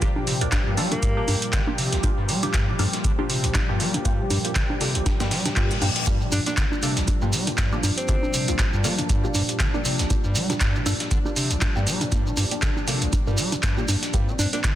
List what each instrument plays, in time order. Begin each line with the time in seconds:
Already playing: analog synth pad A#2 F3 G3 G4
0.02 acid bass D3, synth stab A#3 D4 F4 G4, kick, closed hi-hat, shaker
0.16 high conga
0.27 acid bass C3, open hi-hat, shaker
0.41 acid bass G1, synth stab A#3 D4 F4 G4, closed hi-hat
0.52 acid bass G2, kick, snare, clap, closed hi-hat, high conga, shaker
0.66 acid bass G2
0.77 acid bass G3, synth stab A#3 D4 F4 A4, snare, open hi-hat, shaker
0.92 acid bass F2, alto saxophone A#3, closed hi-hat, high conga
1.03 acid bass G2, kick, closed hi-hat, shaker
1.17 acid bass A#2, synth stab A#3 D4 F4 G4
1.28 acid bass G2, open hi-hat, high conga, shaker
1.42 closed hi-hat
1.53 acid bass D3, kick, snare, clap, closed hi-hat, shaker
1.67 synth stab A#3 D4 F4 G4, high conga
1.78 acid bass C3, open hi-hat, shaker
1.93 acid bass G1, snare, closed hi-hat
2.04 acid bass G2, synth stab A#3 D4 F4 G4, kick, closed hi-hat, high conga, shaker
2.18 acid bass G2
2.29 acid bass G3, open hi-hat, shaker
2.43 acid bass F2, synth stab A#3 D4 F4 G4, snare, closed hi-hat, high conga
2.54 acid bass G2, kick, snare, clap, closed hi-hat, shaker
2.68 acid bass A#2
2.79 acid bass G2, synth stab A#3 D4 F4 A4, open hi-hat, high conga, shaker
2.93 snare, closed hi-hat
3.04 acid bass D3, kick, closed hi-hat, shaker
3.19 synth stab A#3 D4 F4 G4, high conga
3.30 acid bass C3, open hi-hat, shaker
3.44 acid bass G1, closed hi-hat
3.55 acid bass G2, kick, snare, clap, closed hi-hat, high conga, shaker
3.69 acid bass G2, synth stab A#3 D4 F4 G4
3.80 acid bass G3, open hi-hat, shaker
3.94 acid bass F2, closed hi-hat, high conga
4.05 acid bass G2, synth stab A#3 D4 F4 G4, kick, closed hi-hat, shaker
4.19 acid bass A#2
4.30 acid bass G2, open hi-hat, high conga, shaker
4.45 synth stab A#3 D4 F4 G4, closed hi-hat
4.55 acid bass D3, kick, snare, clap, closed hi-hat, shaker
4.70 high conga
4.81 acid bass C3, synth stab A#3 D4 F4 A4, snare, open hi-hat, shaker
4.95 acid bass G1, closed hi-hat
5.06 acid bass G2, kick, snare, closed hi-hat, reverse cymbal, high conga, shaker
5.20 acid bass G2, synth stab A#3 D4 F4 G4, snare, shaker
5.31 acid bass G3, snare, open hi-hat, shaker
5.45 acid bass F2, snare, closed hi-hat, high conga, shaker
5.56 acid bass G2, synth stab A#3 D4 F4 G4, kick, clap, closed hi-hat
5.71 acid bass A#2, snare, shaker
5.82 acid bass G2, synth stab A#3 D4 F4 G4, open hi-hat, high conga, shaker
5.96 snare, closed hi-hat
6.07 acid bass G2, synth stab A#3 D4 F4 G4, analog synth pad D4, kick, closed hi-hat, shaker, shekere
6.21 acid bass A#2, shekere
6.32 acid bass G2, alto saxophone D4, open hi-hat, high conga, shekere, shaker
6.46 synth stab A#3 D4 F4 G4, alto saxophone D4, snare, closed hi-hat, shekere
6.57 acid bass D3, kick, snare, clap, closed hi-hat, shaker, shekere
6.72 high conga, shekere
6.82 acid bass C3, synth stab A#3 D4 F4 A4, open hi-hat, shekere, shaker
6.96 acid bass G1, snare, closed hi-hat, shekere
7.08 acid bass G2, kick, closed hi-hat, high conga, shaker, shekere
7.21 acid bass G2, synth stab A#3 D4 F4 G4, shekere
7.33 acid bass G3, open hi-hat, shekere, shaker
7.47 acid bass F2, closed hi-hat, high conga, shekere
7.58 acid bass G2, kick, snare, clap, closed hi-hat, shekere, shaker
7.72 acid bass A#2, synth stab A#3 D4 F4 G4, shekere
7.83 acid bass G2, open hi-hat, high conga, shaker, shekere
7.98 alto saxophone C4, closed hi-hat, shekere
8.08 acid bass D3, synth stab A#3 D4 F4 G4, kick, closed hi-hat, shekere, shaker
8.23 high conga, shekere
8.34 acid bass C3, open hi-hat, shaker, shekere
8.48 acid bass G1, synth stab A#3 D4 F4 G4, closed hi-hat, shekere
8.59 acid bass G2, kick, snare, clap, closed hi-hat, high conga, shekere, shaker
8.73 acid bass G2, shekere
8.84 acid bass G3, synth stab A#3 D4 F4 A4, snare, open hi-hat, shaker, shekere
8.98 acid bass F2, closed hi-hat, high conga, shekere
9.09 acid bass G2, kick, closed hi-hat, shaker, shekere
9.24 acid bass A#2, synth stab A#3 D4 F4 G4, shekere
9.34 acid bass G2, open hi-hat, high conga, shekere, shaker
9.49 closed hi-hat, shekere
9.60 acid bass D3, kick, snare, clap, closed hi-hat, shaker, shekere
9.74 synth stab A#3 D4 F4 G4, high conga, shekere
9.85 acid bass C3, open hi-hat, shekere, shaker
9.99 acid bass G1, snare, closed hi-hat, shekere
10.10 acid bass G2, synth stab A#3 D4 F4 G4, kick, closed hi-hat, high conga, shekere, shaker
10.24 acid bass G2, shekere
10.35 acid bass G3, open hi-hat, shekere, shaker
10.50 acid bass F2, synth stab A#3 D4 F4 G4, snare, closed hi-hat, high conga, shekere
10.61 acid bass G2, kick, snare, clap, closed hi-hat, shaker, shekere
10.75 acid bass A#2, shekere
10.86 acid bass G2, synth stab A#3 D4 F4 A4, open hi-hat, high conga, shaker, shekere
11.00 snare, closed hi-hat, shekere
11.11 acid bass D3, kick, closed hi-hat, shekere, shaker
11.25 synth stab A#3 D4 F4 G4, high conga, shekere
11.36 acid bass C3, open hi-hat, shekere, shaker
11.51 acid bass G1, closed hi-hat, shekere
11.61 acid bass G2, kick, snare, clap, closed hi-hat, high conga, shaker, shekere
11.76 acid bass G2, synth stab A#3 D4 F4 G4, shekere
11.87 acid bass G3, open hi-hat, shaker, shekere
12.01 acid bass F2, closed hi-hat, high conga, shekere
12.12 acid bass G2, synth stab A#3 D4 F4 G4, kick, closed hi-hat, shekere, shaker
12.26 acid bass A#2, shekere
12.37 acid bass G2, open hi-hat, high conga, shekere, shaker
12.51 synth stab A#3 D4 F4 G4, closed hi-hat, shekere
12.62 acid bass D3, kick, snare, clap, closed hi-hat, shekere, shaker
12.77 high conga, shekere
12.88 acid bass C3, synth stab A#3 D4 F4 A4, snare, open hi-hat, shaker, shekere
13.01 acid bass G1, closed hi-hat, shekere
13.13 acid bass G2, kick, closed hi-hat, high conga, shekere, shaker
13.27 acid bass G2, synth stab A#3 D4 F4 G4, shekere
13.37 acid bass G3, open hi-hat, shekere, shaker
13.52 acid bass F2, closed hi-hat, high conga, shekere
13.63 acid bass G2, kick, snare, clap, closed hi-hat, shaker, shekere
13.77 acid bass A#2, synth stab A#3 D4 F4 G4, shekere
13.88 acid bass G2, open hi-hat, high conga, shaker, shekere
14.03 snare, closed hi-hat, shekere
14.14 acid bass G2, synth stab A#3 D4 F4 G4, analog synth pad C4, kick, closed hi-hat, shaker, shekere
14.28 acid bass A#2, shekere
14.39 acid bass G2, alto saxophone D4, open hi-hat, high conga, shaker, shekere
14.53 synth stab A#3 D4 F4 G4, alto saxophone D4, snare, closed hi-hat, shekere
14.64 acid bass D3, kick, snare, clap, closed hi-hat, shaker, shekere